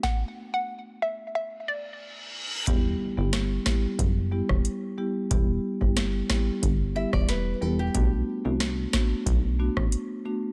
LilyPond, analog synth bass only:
\new Staff \with { instrumentName = "Analog synth bass" } { \clef bass \time 4/4 \key e \minor \tempo 4 = 91 r1 | e,,8 r16 g,,8. r8 fis,,8. e,,16 r4 | e,,8 r16 g,,8. r8 g,,8. e,,8. e,,8 | b,,8 r16 c,8. r8 b,,8. a,,16 r4 | }